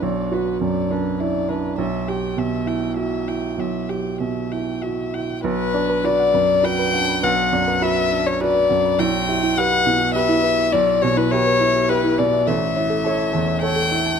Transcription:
0.00 1.74 B1 soft
0.00 0.20 D4 soft
0.00 0.34 D5 soft
0.32 0.79 F#4 soft
0.32 0.62 B4 soft
0.61 1.08 F#2 soft
0.61 0.93 D5 soft
0.91 1.38 D4 soft
0.91 1.21 B4 soft
1.20 1.49 E4 soft
1.20 1.51 D5 medium
1.49 1.79 D4 soft
1.49 1.78 B4 soft
1.78 3.54 B1 soft
1.78 2.10 E5 soft
2.08 2.55 G4 soft
2.08 2.40 G5 soft
2.37 2.84 B2 soft
2.37 2.69 E5 soft
2.66 3.15 E4 soft
2.66 2.96 G5 soft
2.97 3.27 F#4 soft
2.97 3.29 E5 soft
3.27 3.77 E4 soft
3.27 3.61 G5 soft
3.58 5.41 B1 soft
3.58 3.91 E5 soft
3.89 4.39 G4 soft
3.89 4.21 G5 soft
4.20 4.70 B2 soft
4.20 4.53 E5 soft
4.52 5.02 E4 soft
4.52 4.83 G5 soft
4.82 5.14 F#4 soft
4.82 5.15 E5 soft
5.14 5.44 E4 soft
5.14 5.44 G5 soft
5.44 7.19 B1 medium
5.44 6.06 B4 medium
5.44 5.54 B4 medium
5.74 6.22 D4 medium
5.74 5.83 D5 medium
5.90 5.99 B4 loud
6.04 6.31 F#4 soft
6.04 6.31 B4 medium
6.04 6.66 D5 loud
6.04 6.13 B5 medium
6.19 6.28 F#5 medium
6.34 6.82 F#2 soft
6.34 6.43 B4 medium
6.49 6.58 D5 medium
6.63 6.90 F#4 soft
6.63 6.91 B4 medium
6.63 7.25 G5 loud
6.63 6.73 B5 medium
6.79 6.88 B4 medium
6.93 7.41 D4 soft
6.93 7.03 F#5 medium
7.09 7.18 B5 medium
7.23 8.95 B1 medium
7.23 7.32 B4 medium
7.23 7.84 F#5 medium
7.53 8.00 F#2 medium
7.53 7.62 D5 medium
7.68 7.76 B4 loud
7.82 8.08 F#4 medium
7.82 8.08 B4 soft
7.82 8.28 E5 loud
7.82 7.91 B5 medium
7.96 8.05 F#5 medium
8.11 8.58 D4 medium
8.11 8.20 B4 medium
8.26 8.42 C#5 medium
8.26 8.35 D5 medium
8.41 8.67 F#4 soft
8.41 8.67 B4 medium
8.41 9.00 D5 loud
8.41 8.49 B5 medium
8.55 8.64 B4 medium
8.69 8.99 F#2 medium
8.69 8.78 F#5 medium
8.85 8.93 B5 medium
8.99 10.70 B1 medium
8.99 9.08 E4 medium
8.99 9.59 G5 loud
9.29 9.75 E4 medium
9.29 9.37 G4 medium
9.43 9.52 E4 medium
9.57 9.84 G4 medium
9.57 9.84 B4 medium
9.57 9.66 E5 medium
9.57 10.14 F#5 loud
9.72 9.81 B4 medium
9.86 10.33 B2 medium
9.86 9.95 E4 medium
10.01 10.09 G4 medium
10.14 10.42 G4 medium
10.14 10.42 B4 medium
10.14 10.74 E5 loud
10.14 10.24 E5 medium
10.29 10.38 E4 loud
10.43 10.91 E4 medium
10.43 10.52 B4 medium
10.58 10.67 E5 medium
10.72 12.44 B1 medium
10.72 10.81 E4 loud
10.72 11.03 D5 medium
11.02 11.50 B2 medium
11.02 11.11 G4 medium
11.02 11.18 C#5 loud
11.17 11.26 E4 loud
11.17 11.33 B4 medium
11.31 11.59 G4 medium
11.31 11.59 B4 medium
11.31 11.91 C#5 loud
11.31 11.41 E5 medium
11.46 11.55 B4 medium
11.61 11.70 E4 loud
11.61 12.07 E4 medium
11.75 11.84 G4 medium
11.89 12.16 G4 medium
11.89 12.20 B4 loud
11.89 12.16 B4 medium
11.89 11.99 E5 medium
12.04 12.13 E4 medium
12.18 12.48 B2 medium
12.18 12.28 B4 medium
12.18 12.48 D5 medium
12.33 12.42 E5 medium
12.47 14.16 A1 medium
12.47 12.56 A4 medium
12.47 13.61 E5 medium
12.76 13.23 E4 medium
12.76 12.85 C#5 medium
12.90 12.99 A4 medium
13.04 13.31 A4 medium
13.04 13.32 C#5 medium
13.04 13.13 A5 medium
13.18 13.27 E5 medium
13.33 13.80 E2 medium
13.33 13.42 A4 medium
13.48 13.57 C#5 medium
13.62 13.88 A4 medium
13.62 13.89 C#5 medium
13.62 14.20 G5 loud
13.62 13.71 A5 medium
13.76 13.85 A4 medium
13.91 14.20 E4 medium
13.91 14.00 E5 medium
14.06 14.15 A5 medium

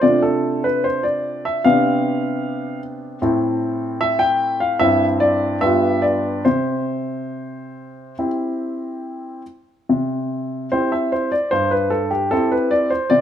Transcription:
0.01 1.61 C3 soft
0.01 1.61 A3 soft
0.01 1.61 D4 soft
0.01 1.62 F4 soft
0.01 0.22 D5 medium
0.22 0.64 A4 medium
0.64 0.84 B4 medium
0.84 1.05 C5 medium
1.03 1.44 D5 medium
1.45 1.65 E5 medium
1.64 3.18 C3 medium
1.64 3.18 B3 soft
1.64 3.18 D4 soft
1.64 3.19 G4 soft
1.64 2.78 F5 medium
3.22 4.77 A2 medium
3.22 4.77 C4 soft
3.22 4.78 E4 soft
3.22 4.78 A4 soft
4.01 4.21 E5 medium
4.19 4.60 G5 medium
4.60 4.81 F5 medium
4.79 5.59 G2 medium
4.79 5.58 C4 soft
4.79 5.58 E4 soft
4.79 5.58 C5 soft
4.79 5.04 E5 medium
5.20 5.61 D5 medium
5.61 6.43 G2 medium
5.61 6.42 B3 soft
5.61 6.42 F4 soft
5.61 6.42 G4 soft
5.61 6.03 E5 medium
6.02 6.45 D5 medium
6.45 8.14 C3 soft
6.45 8.26 C5 medium
8.19 9.41 C4 soft
8.19 9.41 E4 soft
8.19 9.42 G4 soft
9.89 10.69 C3 soft
10.72 11.30 C4 soft
10.72 11.30 E4 soft
10.72 11.30 G4 soft
10.72 10.92 C5 medium
10.92 11.12 E5 medium
11.12 11.32 C5 medium
11.32 11.51 D5 medium
11.51 12.30 G2 soft
11.51 11.71 C5 medium
11.71 11.91 B4 medium
11.90 12.11 A4 medium
12.11 12.31 G4 medium
12.31 12.89 C4 soft
12.31 12.89 E4 soft
12.31 12.90 G4 soft
12.31 12.51 A4 medium
12.52 12.71 B4 soft
12.71 12.91 D5 medium
12.90 13.11 C5 medium
13.10 13.21 C3 medium
13.10 13.21 D5 medium

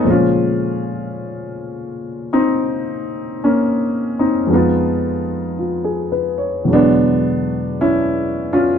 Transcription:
0.04 4.47 A#2 soft
0.04 4.48 C#3 soft
0.04 4.47 F3 soft
0.04 4.47 G#3 soft
0.04 4.48 C5 soft
0.10 2.26 C#4 medium
0.10 2.26 F4 medium
2.33 3.37 C4 medium
2.33 3.36 D#4 medium
3.44 4.13 A#3 medium
3.44 4.19 C#4 medium
4.19 4.49 C4 medium
4.19 4.50 D#4 medium
4.47 6.66 F2 soft
4.47 6.67 F3 soft
4.47 6.65 G#3 soft
4.47 4.53 B3 soft
4.52 6.66 B3 medium
4.52 6.69 D#4 medium
4.52 5.57 F4 medium
5.59 6.11 F4 soft
5.84 6.32 G#4 soft
6.12 6.45 B4 soft
6.38 6.67 C#5 soft
6.64 8.79 E2 soft
6.64 8.79 B2 soft
6.64 8.79 F#3 soft
6.64 8.79 G#3 soft
6.68 8.79 D3 soft
6.68 8.79 C#5 soft
6.73 7.76 B3 medium
6.73 7.82 D4 medium
7.81 8.47 C#4 medium
7.81 8.53 E4 medium
8.53 8.79 C#4 medium
8.53 8.79 F4 medium

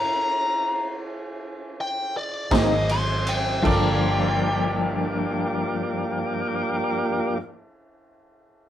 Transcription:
0.00 1.06 A#5 medium
1.06 1.75 G#5 medium
1.81 2.15 G5 medium
2.17 2.52 D5 medium
2.51 3.61 G#1 medium
2.51 2.75 G#2 medium
2.51 3.64 F#3 medium
2.51 2.74 F#3 medium
2.51 3.64 C4 medium
2.51 2.74 C4 medium
2.51 2.74 D#4 medium
2.51 3.65 G#4 soft
2.51 3.65 G#4 medium
2.51 3.63 A#4 soft
2.51 3.66 C5 soft
2.51 3.65 D#5 medium
2.51 3.64 D#5 medium
2.51 2.89 D#5 loud
2.51 2.89 D6 medium
2.51 kick medium
2.51 snare loud
2.51 ride medium
2.89 3.27 C6 loud
2.89 ride medium
3.27 3.65 G5 loud
3.27 ride medium
3.63 7.38 G1 medium
3.63 7.40 G2 medium
3.63 7.44 F3 medium
3.63 7.38 A#3 medium
3.63 7.36 F4 medium
3.63 7.38 F4 medium
3.63 7.38 G4 medium
3.63 7.37 A4 medium
3.63 7.38 A#4 medium
3.63 7.38 D5 medium
3.63 7.40 D5 medium
3.63 kick medium
3.63 crash medium
3.68 7.48 A#3 medium
3.68 7.41 G5 medium
3.74 7.51 D4 medium

